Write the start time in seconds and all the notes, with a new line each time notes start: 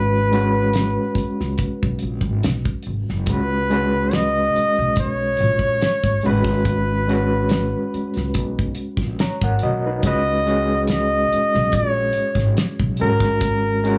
Already playing: G#1 G#3 C#4 F#4 B4
0.32 G#3 C#4 F#4 B4, closed hi-hat
0.73 snare, closed hi-hat
1.15 muted upright bass stroke, kick, closed hi-hat
1.40 C#2, snare
1.58 kick, closed hi-hat
1.83 B1, kick
1.99 A#1, closed hi-hat
2.21 G#1, kick, closed hi-hat
2.43 B1, snare, closed hi-hat
2.65 kick
2.83 closed hi-hat
2.87 G#1
3.09 F#1, snare
3.26 C#2 G#3 C#4 F#4 B4, kick, closed hi-hat
3.31 B4
3.70 G#3 C#4 F#4 B4, closed hi-hat
4.11 D#5, snare, closed hi-hat
4.56 muted upright bass stroke, closed hi-hat
4.76 B1, closed hi-hat
4.96 C#5, kick, closed hi-hat
5.37 A#1, closed hi-hat
5.59 kick
5.81 snare, closed hi-hat
6.04 G#1, kick
6.21 G#3 C#4, open hi-hat
6.25 G#1 F#4 B4
6.44 kick, snare
6.65 kick, closed hi-hat
7.08 G#3 C#4 F#4 B4, closed hi-hat
7.49 snare, closed hi-hat
7.94 muted upright bass stroke, closed hi-hat
8.14 C#2, snare, closed hi-hat
8.34 B1, kick, closed hi-hat
8.59 kick
8.75 closed hi-hat
8.97 A#1, kick, snare
9.19 C#5 A#5, snare, closed hi-hat
9.41 G#1 A#4 F#5, kick
9.59 D#5, closed hi-hat
9.63 B1 F#4
9.86 D#4 B4
10.03 C#2 G#3 C#4 F#4 D#5, kick, closed hi-hat
10.07 B4
10.46 G#3 C#4 F#4 G#4, closed hi-hat
10.87 D#5, snare, closed hi-hat
11.32 muted upright bass stroke, closed hi-hat
11.54 B1, snare
11.72 A#1 C#5, kick, closed hi-hat
12.13 closed hi-hat
12.35 G#1, kick, snare, closed hi-hat
12.57 snare, closed hi-hat
12.80 B1, kick
12.97 G#3, closed hi-hat
13.01 G#1 C#4 F#4 A4 A#4
13.09 A#4
13.20 kick, snare
13.41 kick, closed hi-hat
13.84 G#3 C#4 F#4 A#4, closed hi-hat